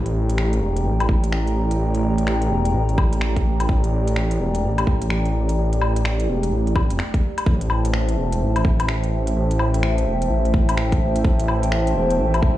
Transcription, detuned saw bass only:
Already playing: A1
0.61 E1
0.85 A1
1.09 A1
1.79 A1
2.51 E1
2.74 A1
3.69 A1
4.40 E1
4.64 A1
4.87 A1
5.58 A1
6.29 E1
6.52 A1
6.76 A1
6.91 E1
7.46 A1
8.17 E1
8.41 A1
8.65 A1
9.36 A1
10.07 E1
10.30 A1
11.25 A1
11.95 E1
12.19 A1
12.42 A1

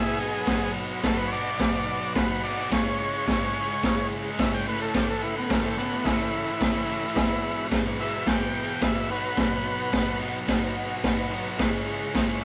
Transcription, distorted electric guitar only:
Already playing: E2 B2 E3
0.19 B2 F#3 B3
0.45 B2 F#3 B3
1.03 B2 F#3 B3
1.31 B2 F#3 B3
1.59 B2 F#3 B3
2.15 B2 F#3 B3
2.43 B2 F#3 B3
2.70 C#3 G#3 C#4
3.27 C#3 G#3 C#4
3.54 C#3 G#3 C#4
3.83 C#3 G#3 C#4
4.39 C#3 G#3 C#4
4.67 A2 E3 A3
4.95 A2 E3 A3
5.51 A2 E3 A3
5.78 A2 E3 A3
6.07 A2 E3 A3
6.61 A2 E3 A3
6.88 A2 E3 A3
7.17 E2 B2 E3
7.72 E2 B2 E3
7.99 E2 B2 E3
8.27 E2 B2 E3
8.83 E2 B2 E3
9.09 B2 F#3 B3
9.36 B2 F#3 B3
9.93 B2 F#3 B3
10.20 B2 F#3 B3
10.47 B2 F#3 B3
11.04 B2 F#3 B3
11.31 B2 F#3 B3
11.60 C#3 G#3 C#4
12.15 C#3 G#3 C#4

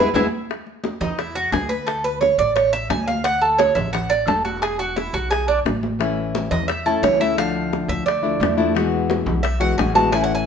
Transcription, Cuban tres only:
0.14 E4 G#4 B4
1.01 D#4
1.19 E4
1.35 F#4
1.52 G#4
1.69 B4
1.87 A4
2.04 B4
2.21 C#5
2.39 D5
2.56 C#5
2.73 E5
2.90 G#5
3.08 F5
3.24 F#5
3.41 A4
3.58 C#5
3.75 E5
3.93 F#5
4.10 D5
4.28 A4
4.45 F#4
4.62 G#4
4.79 F#4
4.96 E4
5.14 F#4
5.31 G#4
5.48 D4
6.51 D#5
6.68 E5
6.86 A4
7.03 C#5
7.21 E5
7.38 F5
7.89 E5
8.06 D5
9.43 E5
9.61 F#5
9.78 G#5
9.95 A5
10.12 G#5
10.24 F#5
10.35 G#5

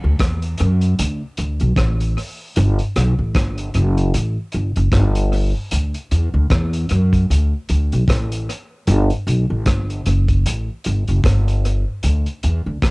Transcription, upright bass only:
0.04 D2
0.20 E2
0.60 F#2
0.99 D2
1.38 D2
1.61 B1
1.77 A1
2.57 G1
2.96 B1
3.19 A1
3.36 G1
3.75 F#1
4.14 A1
4.54 G1
4.77 F#1
4.93 G1
5.72 D2
6.11 E2
6.34 D2
6.51 E2
6.91 F#2
7.30 D2
7.70 D2
7.93 B1
8.08 A1
8.88 G1
9.27 B1
9.50 A1
9.67 G1
10.07 F#1
10.46 A1
10.86 G1
11.08 F#1
11.25 G1
12.04 D2
12.44 E2
12.66 D2
12.83 E2

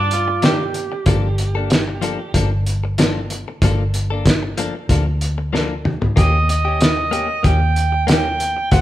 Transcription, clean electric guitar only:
0.28 muted clean electric guitar stroke
0.43 D#3 A#3 D4 G4
0.74 muted clean electric guitar stroke
0.92 muted clean electric guitar stroke
1.07 F3 A#3 D4 A4
1.39 muted clean electric guitar stroke
1.55 A#3 D4 A4
1.71 muted clean electric guitar stroke
1.88 muted clean electric guitar stroke
2.02 F3 A#3 D4 A4
2.19 muted clean electric guitar stroke
2.34 F3 A#3 D4 A4
2.51 muted clean electric guitar stroke
2.84 muted clean electric guitar stroke
2.99 F3 A#3 D4 A4
3.31 muted clean electric guitar stroke
3.48 muted clean electric guitar stroke
3.63 F3 A#3 D4 A4
3.94 muted clean electric guitar stroke
4.10 A#3 D4 A4
4.26 muted clean electric guitar stroke
4.43 muted clean electric guitar stroke
4.58 F3 A#3 D4 A4
4.75 muted clean electric guitar stroke
4.90 F3 A#3 D4 A4
5.06 muted clean electric guitar stroke
5.38 muted clean electric guitar stroke
5.53 F3 A#3 D4 A4
5.85 muted clean electric guitar stroke
6.02 muted clean electric guitar stroke
6.16 A#3 C#4 G4
6.49 muted clean electric guitar stroke
6.65 C#4 G4
6.80 muted clean electric guitar stroke
6.97 muted clean electric guitar stroke
7.11 A#3 C#4 G4
7.28 muted clean electric guitar stroke
7.43 A#3 C#4 G4
7.60 muted clean electric guitar stroke
7.92 muted clean electric guitar stroke
8.07 A#3 C#4 G4
8.39 muted clean electric guitar stroke
8.57 muted clean electric guitar stroke
8.72 F#3 A3 C4 F4

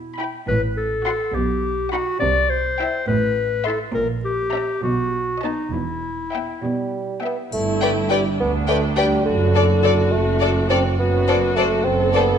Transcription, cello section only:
Already playing: B2
0.49 A2
1.35 B2
2.21 C3
3.09 A2
3.94 A#2
4.84 B2
5.73 E2
6.62 B2
7.53 G2
8.39 D2
9.26 F#2
10.12 F#2
10.99 F#2
11.84 F#2

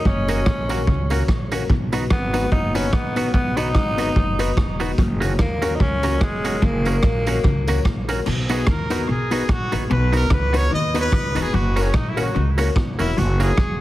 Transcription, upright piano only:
0.28 A#3 C#4 F#4 A#4
0.69 A#3 C#4 F#4 A#4
0.88 F#4 A#4
1.10 A#3 C#4 F#4 A#4
1.51 A#3 C#4 F#4 A#4
1.92 B3 D#4 F#4 B4
2.34 B3 D#4 F#4 B4
2.75 B3 D#4 F#4 B4
3.16 B3 D#4 F#4 B4
3.57 B3 D#4 F#4 B4
3.98 B3 D#4 F#4 B4
4.16 F#4 B4
4.39 B3 D#4 F#4 B4
4.80 B3 D#4 F#4 B4
5.21 A#3 C#4 F#4 A#4
5.62 A#3 C#4 F#4 A#4
6.03 A#3 C#4 F#4 A#4
6.44 A#3 C#4 F#4 A#4
6.85 A#3 C#4 F#4 A#4
7.26 A#3 C#4 F#4 A#4
7.45 F#4 A#4
7.67 A#3 C#4 F#4 A#4
8.08 A#3 C#4 F#4 A#4
8.49 B3 D#4 F#4 B4
8.90 B3 D#4 F#4 B4
9.31 B3 D#4 F#4 B4
9.72 B3 D#4 F#4 B4
10.12 B3 D#4 F#4 B4
10.54 B3 D#4 F#4 B4
10.72 F#4 B4
10.94 B3 D#4 F#4 B4
11.35 B3 D#4 F#4 B4
11.76 A#3 C#4 F#4 A#4
12.16 A#3 C#4 F#4 A#4
12.57 A#3 C#4 F#4 A#4
12.98 A#3 C#4 F#4 A#4
13.39 A#3 C#4 F#4 A#4

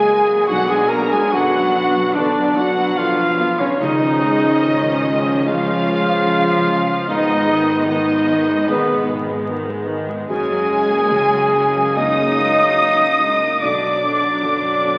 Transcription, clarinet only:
Already playing: G#4
0.47 F#4
0.69 G#4
0.88 A#4
1.11 G#4
1.31 F#4
2.14 D4
2.56 F#4
2.98 F4
3.61 C#4
3.80 D#4
5.45 F4
7.08 D#4
7.90 D#4
8.68 B3
10.30 G#4
11.97 D#5
13.61 D5

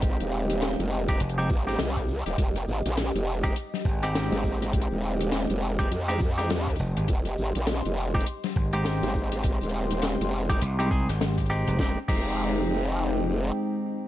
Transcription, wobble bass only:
Already playing: G#1
0.20 D#1
0.79 F1
1.50 G#1
1.80 C2
2.26 D#1
2.38 F1
2.68 G#1
2.86 A#1
3.15 F1
4.32 G#1
4.91 D#1
5.50 F1
5.91 F2
6.52 E2
7.09 F1
7.39 G#1
7.56 A#1
7.86 F1
9.03 G#1
9.62 D#1
10.21 F1
11.79 F1
12.09 F1

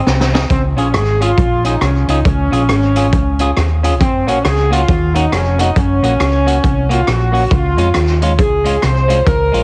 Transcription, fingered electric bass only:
0.07 C2
0.50 C#2
0.77 A#1
0.94 G#1
1.38 A#1
1.81 C2
2.08 C#2
2.25 C#2
2.52 A#1
2.69 G#1
3.13 C#2
3.57 D#2
4.01 F#1
4.27 A#1
4.45 C#2
4.88 D#2
5.32 F1
5.76 F#1
6.02 A#1
6.20 C#2
6.64 C2
7.08 A#1
7.51 C#2
7.78 F2
7.95 D#2
8.39 C#2
8.83 C2
9.26 C#2
9.54 A#1

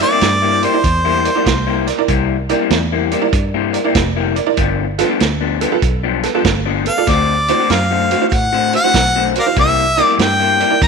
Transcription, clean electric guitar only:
0.01 C3 G3 A#3 E4
0.11 C3 G3 A#3 E4
0.42 C3 G3 A#3 E4
0.63 C3 G3 A#3 E4
1.05 C3 G3 A#3 E4
1.37 C3 G3 A#3 E4
1.67 C3 G3 A#3 E4
1.88 muted clean electric guitar stroke
1.99 muted clean electric guitar stroke
2.09 C3 G3 A#3 E4
2.50 C3 G3 A#3 E4
2.61 C3 G3 A#3 E4
2.92 C3 G3 A#3 E4
3.12 C3 G3 A#3 E4
3.54 C3 G3 A#3 E4
3.85 C3 G3 A#3 E4
4.16 C3 G3 A#3 E4
4.37 muted clean electric guitar stroke
4.48 muted clean electric guitar stroke
4.58 G2 F3 B3 D4
4.99 G2 F3 B3 D4
5.09 G2 F3 B3 D4
5.41 G2 F3 B3 D4
5.62 G2 F3 B3 D4
6.03 G2 F3 B3 D4
6.35 G2 F3 B3 D4
6.66 G2 F3 B3 D4
6.86 muted clean electric guitar stroke
6.97 muted clean electric guitar stroke
7.08 D3 A3 C4 F#4
7.48 D3 A3 C4 F#4
7.59 D3 A3 C4 F#4
7.91 D3 A3 C4 F#4
8.11 D3 A3 C4 F#4
8.53 D3 A3 C4 F#4
8.84 D3 A3 C4 F#4
9.15 D3 A3 C4 F#4
9.36 muted clean electric guitar stroke
9.46 muted clean electric guitar stroke
9.57 C3 G3 A#3 E4
9.98 C3 G3 A#3 E4
10.08 C3 G3 A#3 E4
10.40 C3 G3 A#3 E4
10.60 C3 G3 A#3 E4

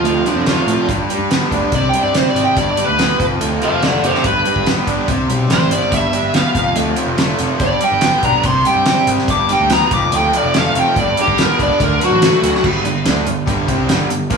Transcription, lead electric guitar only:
Already playing: F4
0.27 D4
0.47 F4
1.75 D5
1.89 G5
2.03 D5
2.16 C5
2.30 D5
2.44 G5
2.58 D5
2.71 D5
2.85 B4
3.63 C5 F5
3.83 A4 D5
4.05 G4 C5
4.26 B4
5.52 C5
5.72 D5
5.94 E5
6.35 F5
7.62 D5
7.84 G5
8.25 A#5
8.46 C6
8.67 G5
9.31 D6
9.53 G5
9.73 A#5
9.94 D6
10.16 G5
10.37 D5
10.58 F5
10.79 G5
10.99 D5
11.21 G4
11.41 A#4
11.63 D5
11.84 A#4
12.04 F#4

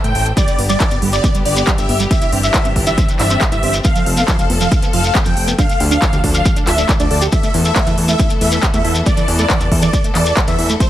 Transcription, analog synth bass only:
0.04 A2
0.15 A1
0.59 G1
0.91 G1
1.02 G1
1.46 G1
1.78 G1
1.89 G1
2.32 G1
2.65 G1
2.76 G1
3.19 G1
3.52 G1
3.63 G1
4.06 F1
4.39 F1
4.50 F1
4.93 F1
5.26 F1
5.37 F1
5.80 D2
6.13 D2
6.24 D2
6.67 D1
7.00 D2
7.11 D2
7.54 E2
7.87 E2
7.98 E2
8.41 E2
8.74 E2
8.85 E2
9.28 E2
9.61 E2
9.72 E2
10.15 E2
10.48 E2
10.59 E2

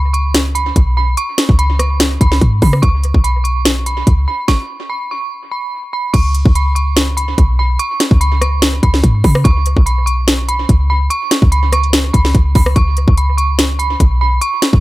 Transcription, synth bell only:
Already playing: B5
0.13 C#6
0.55 B5
0.97 B5
1.17 C#6
1.59 B5
1.79 C#6
2.21 B5
2.62 B5
2.82 C#6
3.24 B5
3.44 C#6
3.86 B5
4.28 B5
4.48 C#6
4.90 B5
5.11 C#6
5.51 B5
5.93 B5
6.13 C#6
6.56 B5
6.75 C#6
7.17 B5
7.59 B5
7.79 C#6
8.21 B5
8.41 C#6
8.83 B5
9.24 B5
9.44 C#6
9.86 B5
10.06 C#6
10.49 B5
10.90 B5
11.10 C#6
11.52 B5
11.73 C#6
12.13 B5
12.55 B5
12.76 C#6
13.18 B5
13.38 C#6
13.79 B5
14.21 B5
14.41 C#6

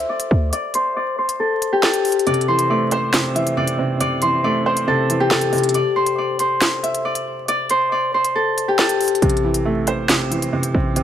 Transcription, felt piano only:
2.27 C3
2.49 E3
2.70 A3
2.92 C5
3.14 C3
3.35 E3
3.57 C3
3.79 C3
4.01 C3
4.23 E3
4.44 A3
4.66 C5
4.87 C3
5.09 E3
5.31 C3
5.53 C3
9.22 C3
9.44 E3
9.65 A3
9.88 C5
10.10 C3
10.31 E3
10.53 C3
10.74 C3
10.96 C3

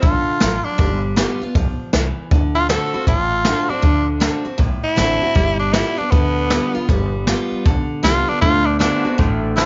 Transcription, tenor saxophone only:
0.01 F4
0.64 D4
2.55 F4
2.69 A4
3.08 F4
3.69 D4
4.84 E4
5.59 D4
5.73 E4
5.98 D4
6.11 B3
8.04 F4
8.29 D4
8.41 F4
8.66 D4
8.80 D4
9.56 F4

